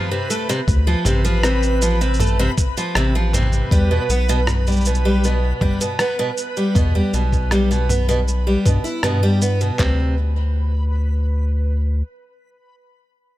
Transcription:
Already playing: B4 B5
0.11 C3
0.30 A3, shaker
0.49 C3, shaker
0.68 D2, kick, shaker
0.87 F3
1.05 A1 C3, mid tom, shaker
1.25 F3, shaker
1.43 C3, cross-stick, shaker
1.63 shaker
1.82 F3, shaker
2.01 C3, shaker
2.14 shaker
2.20 A3, mid tom, shaker
2.26 shaker
2.39 C3
2.58 kick, shaker
2.77 F3, shaker
2.95 A1 C3, cross-stick, shaker
3.15 F3
3.33 C3, mid tom, shaker
3.38 mid tom
3.43 mid tom
3.47 mid tom
3.52 mid tom, shaker
3.57 mid tom
3.62 mid tom
3.67 mid tom
3.71 E2 G3, kick, shaker
3.91 B2
4.09 B1 B3, shaker
4.29 B2, shaker
4.47 cross-stick, mid tom, shaker
4.67 G3, shaker
4.72 shaker
4.76 shaker
4.81 shaker
4.85 B2, shaker
4.95 shaker
5.05 G3
5.24 B2, shaker
5.61 G3, kick, mid tom
5.81 B2, shaker
5.99 B3, cross-stick, shaker
6.19 B2
6.37 shaker
6.57 G3, shaker
6.75 E2 B2, kick, mid tom, shaker
6.95 G3
7.13 B1 B2, shaker
7.32 kick, shaker
7.51 G3, cross-stick, shaker
7.71 B2, shaker
7.89 B3, mid tom, shaker
8.09 B2, shaker
8.28 shaker
8.47 G3
8.66 G2 B2, kick, shaker
8.84 E4, shaker
9.03 G2 B2, cross-stick, mid tom, shaker
9.23 G3
9.42 B3, shaker
9.61 B2, shaker
9.79 D2 C3, kick, clap

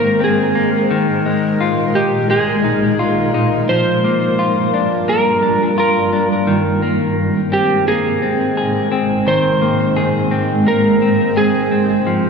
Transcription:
Already playing: G#2 D#3 G#3 A#3 C4 A#4 C5
0.20 C4 G#4
0.55 A#3
0.90 A#2 D#3 D#4
1.26 G#3
1.61 F4
1.95 D#4 G4
2.30 G#3 G#4
2.64 D#4
2.99 F4
3.34 D#4
3.69 G2 F3 G3 F4 C5
4.04 A#3
4.39 F4
4.74 D4
5.08 A#3 A#4
5.42 D4
5.78 F4 A#4
6.13 D4
6.47 G#2 D#3 G#3 C4
6.82 A#3
7.52 C4 G4
7.88 A#3 G#4
8.22 C4
8.57 G#4
8.92 C4
9.27 D#3 C5
9.62 A#3
9.97 G#4
10.31 C4
10.67 A#3 A#4
11.02 C4
11.37 G#4
11.71 C4
12.07 F3

